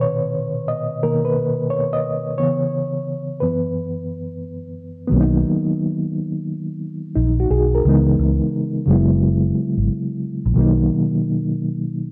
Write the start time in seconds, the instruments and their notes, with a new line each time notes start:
Already playing: reed electric piano A#2 B2 D#3
0.01 reed electric piano C#5
0.68 reed electric piano D#5
1.03 reed electric piano B2 D#3 A#3 A#4
1.25 reed electric piano B4
1.70 reed electric piano C#5
1.93 reed electric piano D#5
2.38 reed electric piano C#3 E3 B3 C#5
3.40 reed electric piano F#2 E3 B3 B4
5.08 reed electric piano D#3 F#3 B3
5.12 fingered electric bass B1, reed electric piano A#3 C#4
5.21 reed electric piano D#4
7.16 fingered electric bass A#1, reed electric piano D#4
7.40 reed electric piano F#4
7.50 fingered electric bass B1, reed electric piano G#4
7.75 reed electric piano A#4
7.85 fingered electric bass C#2, reed electric piano C#3 E3 G#3 B3
7.89 reed electric piano D#4
8.19 fingered electric bass C#2
8.85 fingered electric bass F#1, reed electric piano C#3 F#3 G#3
8.91 reed electric piano B3 E4
9.77 fingered electric bass G#1
10.46 fingered electric bass A#1
10.54 fingered electric bass B1, reed electric piano B2 D#3 F#3
10.59 reed electric piano A#3 D#4